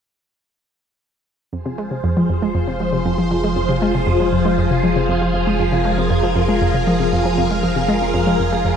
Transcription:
1.53 8.77 F1 medium
1.53 1.57 F2 medium
1.53 8.77 F3 medium
1.53 8.77 F4 medium
1.53 8.77 G#4 medium
1.53 5.56 C5 medium
1.66 1.76 C3 medium
1.78 1.82 G#3 medium
1.91 1.95 C3 medium
2.04 2.14 F2 medium
2.17 2.27 F3 medium
2.30 2.40 F2 medium
2.42 2.49 G#3 medium
2.55 2.59 F2 medium
2.67 2.78 C3 medium
2.80 2.87 F3 medium
2.93 2.97 C3 medium
3.05 3.16 F2 loud
3.18 3.29 F3 medium
3.31 3.38 F2 medium
3.44 3.51 G#3 medium
3.56 3.60 F2 medium
3.69 3.79 C3 medium
3.82 3.86 G#3 medium
3.95 3.99 C3 medium
4.07 4.17 F2 medium
4.20 4.30 F3 medium
4.33 4.43 F2 medium
4.45 4.52 G#3 medium
4.58 4.62 F2 medium
4.71 4.81 C3 medium
4.83 4.90 F3 medium
4.96 5.00 C3 medium
5.09 5.19 F2 medium
5.22 5.32 F3 medium
5.34 5.41 F2 medium
5.47 5.54 G#3 medium
5.59 5.64 F2 medium
5.59 8.77 A#4 medium
5.72 5.83 C3 medium
5.85 5.89 G#3 medium
5.98 6.02 C3 medium
6.10 6.21 F2 medium
6.23 6.34 F3 medium
6.36 6.46 F2 medium
6.49 6.56 G#3 medium
6.61 6.66 F2 medium
6.74 6.85 C3 medium
6.87 6.94 F3 medium
7.00 7.04 C3 medium
7.13 7.23 F2 medium
7.25 7.36 F3 medium
7.38 7.45 F2 loud
7.51 7.57 G#3 medium
7.63 7.67 F2 medium
7.76 7.86 C3 medium
7.88 7.93 G#3 medium
8.01 8.05 C3 medium
8.14 8.24 F2 loud
8.27 8.37 F3 medium
8.40 8.50 F2 medium
8.53 8.59 G#3 medium
8.65 8.69 F2 medium

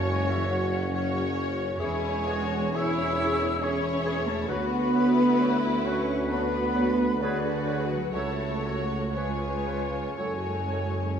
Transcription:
0.00 1.74 F#1 medium
0.00 1.75 F#2 medium
0.00 0.90 C#3 medium
0.00 0.90 C#4 medium
0.00 1.75 C#4 medium
0.00 0.92 F#4 medium
0.00 0.94 F#4 medium
0.00 1.75 F#4 medium
0.00 0.92 C#5 medium
0.00 0.94 C#5 medium
0.00 4.45 C#5 medium
0.00 0.11 A5 medium
0.08 0.30 G#3 medium
0.08 1.75 C#4 medium
0.08 0.31 G#5 medium
0.30 0.51 E3 medium
0.30 0.53 E5 medium
0.50 0.91 F#3 medium
0.50 0.93 F#5 medium
0.92 1.77 C#3 medium
0.92 1.34 F#3 medium
0.92 1.77 C#4 medium
0.92 1.77 F#4 medium
0.92 1.77 C#5 medium
0.92 1.78 C#5 medium
0.92 1.34 F#5 medium
1.78 4.45 E1 medium
1.78 4.46 E2 medium
1.78 1.96 E3 medium
1.78 2.70 G#3 loud
1.78 2.73 C#4 medium
1.78 4.45 C#4 medium
1.78 2.26 E4 medium
1.78 4.45 G#4 medium
1.78 2.74 G#4 medium
1.78 1.95 G#4 medium
1.78 2.73 C#5 medium
1.78 1.96 C#5 medium
1.78 2.77 G#5 medium
2.26 2.43 E3 medium
2.26 2.75 F#4 medium
2.26 2.42 G#4 medium
2.26 2.44 C#5 medium
2.74 2.92 E3 medium
2.74 3.61 C#4 medium
2.74 3.62 E4 loud
2.74 3.18 G#4 medium
2.74 2.90 G#4 medium
2.74 3.61 G#4 medium
2.74 3.61 C#5 medium
2.74 2.91 C#5 medium
2.74 3.65 E6 loud
3.19 3.36 E3 medium
3.19 3.61 G#4 medium
3.19 3.37 G#4 medium
3.19 3.36 C#5 medium
3.62 3.79 E3 medium
3.62 4.47 C#4 medium
3.62 4.27 C#4 loud
3.62 4.49 E4 medium
3.62 3.78 G#4 medium
3.62 4.47 G#4 medium
3.62 3.79 C#5 medium
3.62 4.47 C#5 medium
3.62 4.29 C#6 medium
4.06 4.22 E3 medium
4.06 4.22 G#4 medium
4.06 4.22 C#5 medium
4.27 4.50 A3 medium
4.27 4.49 A5 medium
4.48 7.98 D2 medium
4.48 8.10 D2 medium
4.48 4.66 F#3 medium
4.48 5.85 B3 loud
4.48 6.29 F#4 medium
4.48 4.65 F#4 medium
4.48 9.15 F#4 medium
4.48 4.95 F#4 medium
4.48 4.65 B4 medium
4.48 7.98 B4 medium
4.48 6.29 B4 medium
4.48 5.87 B5 medium
4.94 5.10 F#3 medium
4.94 6.30 E4 loud
4.94 5.12 F#4 medium
4.94 5.11 B4 medium
5.41 5.57 F#3 medium
5.41 5.57 F#4 medium
5.41 5.57 B4 medium
5.84 6.01 F#3 medium
5.84 6.29 C#4 loud
5.84 6.03 F#4 medium
5.84 6.02 B4 medium
5.84 6.30 C#6 medium
6.30 6.46 F#3 medium
6.30 7.21 B3 loud
6.30 7.21 D4 medium
6.30 7.19 F#4 medium
6.30 6.47 F#4 medium
6.30 6.46 B4 medium
6.30 7.19 B4 medium
6.30 7.22 B5 medium
6.76 6.92 F#3 medium
6.76 6.95 F#4 medium
6.76 6.92 B4 medium
7.20 7.89 D3 medium
7.20 7.38 F#3 medium
7.20 8.12 F#4 medium
7.20 8.13 F#4 medium
7.20 8.14 G#4 medium
7.20 8.13 G#4 medium
7.20 7.40 G#4 medium
7.20 8.12 B4 medium
7.20 7.38 B4 medium
7.20 7.92 D5 medium
7.67 7.83 F#3 medium
7.67 7.85 G#4 medium
7.67 7.84 B4 medium
7.91 8.15 F#3 medium
7.91 8.15 F#5 medium
8.14 10.14 C#2 medium
8.14 8.31 F#3 medium
8.14 9.15 A3 medium
8.14 8.64 E4 medium
8.14 9.13 F#4 medium
8.14 9.12 A4 medium
8.14 9.16 A4 medium
8.14 8.32 A4 medium
8.14 9.13 C#5 medium
8.14 8.31 C#5 medium
8.14 11.20 C#5 medium
8.14 8.83 A5 medium
8.65 8.81 F#3 medium
8.65 9.15 F#4 medium
8.65 8.82 A4 medium
8.65 8.82 C#5 medium
9.14 9.31 F3 soft
9.14 10.17 G#3 medium
9.14 10.16 F4 medium
9.14 9.66 G#4 medium
9.14 10.18 B4 medium
9.14 10.19 B4 medium
9.14 9.32 B4 soft
9.14 10.16 C#5 medium
9.14 9.32 C#5 medium
9.14 10.14 G#5 medium
9.66 9.82 F3 soft
9.66 10.18 F4 medium
9.66 9.82 B4 soft
9.66 9.82 C#5 soft
10.17 11.20 F#1 medium
10.17 11.20 F#2 medium
10.17 10.35 F#3 medium
10.17 11.20 G#3 medium
10.17 11.20 C#4 medium
10.17 11.20 F#4 medium
10.17 11.20 A4 medium
10.17 10.34 A4 medium
10.17 10.33 C#5 medium
10.17 11.20 C#5 medium
10.17 11.20 G#5 medium
10.70 10.88 F#3 soft
10.70 10.87 A4 soft
10.70 10.86 C#5 soft

